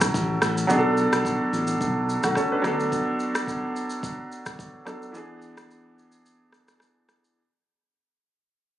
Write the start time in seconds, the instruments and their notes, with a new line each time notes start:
Already playing: grand piano F#3 C#4 E4 A4
0.01 kick, cross-stick, shaker
0.14 fingered electric bass A1, kick, shaker
0.42 fingered electric bass A1, cross-stick, shaker
0.57 shaker
0.67 fingered electric bass B1, grand piano F#3 B3 D4, kick, shaker
0.72 grand piano G#4
0.79 grand piano A4
0.97 shaker
1.13 fingered electric bass B1, cross-stick, shaker
1.25 kick, shaker
1.53 fingered electric bass A1, shaker
1.67 shaker
1.81 fingered electric bass B1, kick, shaker
2.09 shaker
2.23 fingered electric bass B1, grand piano A3 F#4, kick, cross-stick, shaker
2.35 grand piano C#4 A4, kick, cross-stick, shaker
2.52 grand piano D4 B4
2.62 fingered electric bass D2, grand piano F#3 B3 D4, cross-stick, shaker
2.67 grand piano A4
2.80 shaker
2.92 kick, shaker
3.20 shaker
3.35 cross-stick, shaker
3.47 kick, shaker
3.76 shaker
3.90 shaker
4.03 kick, shaker
4.32 shaker
4.46 kick, cross-stick, shaker
4.59 kick, shaker
4.85 grand piano F#3 B3 D4 A4, cross-stick, shaker
5.02 shaker
5.12 grand piano E3 B3 D4, shaker
5.17 grand piano G#4
5.42 shaker
5.57 cross-stick, shaker
5.71 shaker
5.99 shaker
6.12 shaker
6.26 shaker
6.53 cross-stick, shaker
6.68 cross-stick, shaker
6.80 cross-stick, shaker
7.09 cross-stick, shaker
7.24 shaker